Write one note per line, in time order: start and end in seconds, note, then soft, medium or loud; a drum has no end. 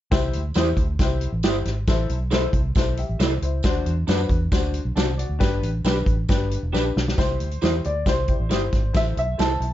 0.11 0.30 C2 medium
0.11 0.39 E4 loud
0.11 0.39 G4 medium
0.11 0.39 C5 loud
0.11 kick medium
0.11 snare loud
0.11 closed hi-hat medium
0.11 tambourine medium
0.33 0.52 D2 medium
0.33 closed hi-hat medium
0.54 0.74 E2 medium
0.54 0.67 E4 medium
0.54 0.83 E4 medium
0.54 0.83 G4 medium
0.54 0.68 G4 medium
0.54 0.83 C5 medium
0.54 0.68 C5 medium
0.54 snare loud
0.54 closed hi-hat medium
0.54 tambourine medium
0.77 0.95 D2 medium
0.77 kick medium
0.77 closed hi-hat medium
0.99 1.26 C2 medium
0.99 1.27 E4 medium
0.99 1.28 G4 medium
0.99 1.28 C5 medium
0.99 kick medium
0.99 snare medium
0.99 closed hi-hat medium
0.99 tambourine medium
1.21 closed hi-hat medium
1.32 1.42 A1 medium
1.43 1.61 G1 medium
1.43 1.55 E4 medium
1.43 1.71 E4 medium
1.43 1.56 G4 medium
1.43 1.71 G4 medium
1.43 1.56 C5 medium
1.43 1.72 C5 medium
1.43 snare loud
1.43 closed hi-hat medium
1.43 tambourine medium
1.65 1.83 G#1 medium
1.65 snare soft
1.65 closed hi-hat medium
1.87 2.06 A1 medium
1.87 2.15 E4 medium
1.87 2.15 A4 medium
1.87 2.16 C5 loud
1.87 kick medium
1.87 snare loud
1.87 closed hi-hat medium
1.87 tambourine medium
2.09 2.46 B1 medium
2.09 closed hi-hat medium
2.31 2.43 E4 medium
2.31 2.59 E4 medium
2.31 2.43 A4 medium
2.31 2.59 A4 medium
2.31 2.44 C5 medium
2.31 2.60 C5 medium
2.31 snare loud
2.31 closed hi-hat medium
2.31 tambourine medium
2.53 2.71 C2 medium
2.53 kick medium
2.53 closed hi-hat medium
2.75 3.03 B1 medium
2.75 2.98 E4 medium
2.75 2.98 A4 medium
2.75 2.98 C5 medium
2.75 kick medium
2.75 snare loud
2.75 closed hi-hat medium
2.75 tambourine medium
2.97 3.20 G4 medium
2.97 3.19 E5 medium
2.97 closed hi-hat medium
3.09 3.18 A1 medium
3.20 3.38 C2 medium
3.20 3.32 E4 medium
3.20 3.32 A4 medium
3.20 3.32 C5 medium
3.20 3.42 D5 medium
3.20 snare loud
3.20 closed hi-hat medium
3.20 tambourine medium
3.42 3.60 C#2 medium
3.42 3.85 E4 medium
3.42 3.64 C5 medium
3.42 closed hi-hat medium
3.63 3.82 D2 loud
3.63 3.92 D4 loud
3.63 3.92 F#4 medium
3.63 3.92 C5 loud
3.63 kick loud
3.63 snare loud
3.63 closed hi-hat medium
3.63 tambourine medium
3.85 4.04 E2 medium
3.85 closed hi-hat medium
4.07 4.26 F#2 medium
4.07 4.19 D4 medium
4.07 4.36 D4 medium
4.07 4.20 F#4 medium
4.07 4.36 F#4 medium
4.07 4.36 B4 medium
4.07 4.20 C5 medium
4.07 snare loud
4.07 closed hi-hat medium
4.07 tambourine loud
4.29 4.47 E2 medium
4.29 kick medium
4.29 closed hi-hat medium
4.52 4.79 D2 medium
4.52 4.79 D4 medium
4.52 4.79 F#4 medium
4.52 4.79 C5 medium
4.52 kick medium
4.52 snare loud
4.52 closed hi-hat medium
4.52 tambourine medium
4.74 closed hi-hat medium
4.85 4.94 B1 medium
4.96 5.23 C2 medium
4.96 5.08 D4 medium
4.96 5.08 F#4 medium
4.96 5.18 C5 soft
4.96 5.08 C5 medium
4.96 5.17 A5 medium
4.96 snare loud
4.96 closed hi-hat medium
4.96 tambourine medium
5.18 5.61 F#4 medium
5.18 5.60 D5 medium
5.18 closed hi-hat medium
5.29 5.38 D2 medium
5.39 5.59 G1 medium
5.39 5.67 D4 loud
5.39 5.68 G4 medium
5.39 5.68 B4 loud
5.39 kick loud
5.39 snare loud
5.39 closed hi-hat medium
5.39 tambourine medium
5.63 5.80 A1 medium
5.63 closed hi-hat medium
5.84 6.02 B1 medium
5.84 6.12 D4 medium
5.84 5.97 D4 medium
5.84 6.12 G4 medium
5.84 5.97 G4 medium
5.84 6.12 B4 medium
5.84 5.97 B4 medium
5.84 snare loud
5.84 closed hi-hat medium
5.84 tambourine loud
6.06 6.24 A1 medium
6.06 kick medium
6.06 closed hi-hat medium
6.28 6.56 G1 medium
6.28 6.56 D4 medium
6.28 6.56 G4 medium
6.28 6.57 B4 medium
6.28 kick loud
6.28 snare loud
6.28 closed hi-hat medium
6.28 tambourine medium
6.51 closed hi-hat medium
6.63 6.71 E1 medium
6.73 6.91 A#1 medium
6.73 6.85 D4 medium
6.73 7.00 D4 medium
6.73 7.00 G4 medium
6.73 6.85 G4 medium
6.73 7.01 B4 medium
6.73 6.85 B4 medium
6.73 snare medium
6.73 tambourine medium
6.96 7.14 B1 medium
6.96 snare medium
7.08 snare medium
7.17 7.36 C2 medium
7.17 7.45 E4 medium
7.17 7.45 G4 medium
7.17 7.45 C5 medium
7.17 7.86 C5 medium
7.17 kick loud
7.17 snare loud
7.17 closed hi-hat medium
7.17 tambourine medium
7.40 7.58 D2 medium
7.40 closed hi-hat medium
7.51 closed hi-hat soft
7.62 7.80 E2 medium
7.62 7.73 E4 medium
7.62 7.89 E4 medium
7.62 7.74 G4 medium
7.62 7.90 G4 medium
7.62 7.74 C5 medium
7.62 7.90 C5 medium
7.62 snare loud
7.62 closed hi-hat medium
7.62 tambourine medium
7.84 8.03 D2 medium
7.84 8.07 D5 medium
7.84 closed hi-hat medium
8.06 8.33 C2 medium
8.06 8.19 E4 medium
8.06 8.20 G4 medium
8.06 8.20 C5 medium
8.06 8.98 C5 medium
8.06 kick medium
8.06 snare medium
8.06 closed hi-hat medium
8.06 tambourine medium
8.28 8.42 E4 medium
8.28 8.42 G4 medium
8.28 8.42 C5 medium
8.28 kick medium
8.28 closed hi-hat medium
8.40 8.48 A1 medium
8.50 8.68 G1 medium
8.50 8.62 E4 medium
8.50 8.78 E4 medium
8.50 8.62 G4 medium
8.50 8.78 G4 medium
8.50 8.62 C5 medium
8.50 8.78 C5 medium
8.50 snare medium
8.50 closed hi-hat medium
8.50 tambourine medium
8.72 8.90 G#1 medium
8.72 kick medium
8.72 snare soft
8.72 closed hi-hat medium
8.93 9.13 A1 medium
8.93 9.21 E4 medium
8.93 9.22 A4 medium
8.93 9.21 C5 medium
8.93 9.02 E5 loud
8.93 kick loud
8.93 snare loud
8.93 closed hi-hat medium
8.93 tambourine medium
9.17 9.35 B1 medium
9.17 9.40 E5 medium
9.17 closed hi-hat medium
9.38 9.57 C2 medium
9.38 9.66 E4 medium
9.38 9.51 E4 medium
9.38 9.66 A4 medium
9.38 9.51 A4 medium
9.38 9.66 C5 medium
9.38 9.51 C5 medium
9.38 9.73 A5 medium
9.38 snare loud
9.38 closed hi-hat medium
9.38 tambourine medium
9.60 9.73 B1 medium
9.60 closed hi-hat medium